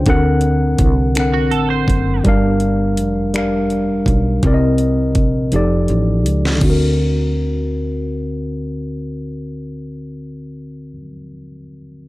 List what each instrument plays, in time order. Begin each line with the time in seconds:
0.06 fretless electric bass D2, tine electric piano D3 C4 A#4, kick, closed hi-hat
0.10 tine electric piano F#5
0.41 closed hi-hat
0.78 fretless electric bass C2, kick, closed hi-hat
1.15 tine electric piano D3 C4 A#4, finger snap, closed hi-hat
1.20 tine electric piano F#5
1.34 clean electric guitar F#4
1.51 fretless electric bass A1, clean electric guitar A4, closed hi-hat
1.70 clean electric guitar C5
1.88 fretless electric bass F#1, kick, closed hi-hat
2.24 fretless electric bass G1, tine electric piano G3 D4 A#4, kick, closed hi-hat
2.29 tine electric piano F5
2.60 closed hi-hat
2.97 fretless electric bass F1, closed hi-hat
3.34 tine electric piano G3 D4 A#4 F5, finger snap, closed hi-hat
3.70 closed hi-hat
4.06 fretless electric bass B1, kick, closed hi-hat
4.43 fretless electric bass C2, tine electric piano C3 C4 A#4, kick, closed hi-hat
4.47 tine electric piano D5
4.54 tine electric piano D#5
4.78 closed hi-hat
5.15 fretless electric bass A#1, kick, closed hi-hat
5.52 fretless electric bass F1, tine electric piano F3 D#4 G4 A4, closed hi-hat
5.56 tine electric piano D5
5.88 fretless electric bass A1, closed hi-hat
6.26 fretless electric bass C#2, closed hi-hat
6.45 snare
6.55 tine electric piano D3
6.60 fretless electric bass D2, tine electric piano C4, kick, crash
6.65 tine electric piano F#4
6.70 tine electric piano A#4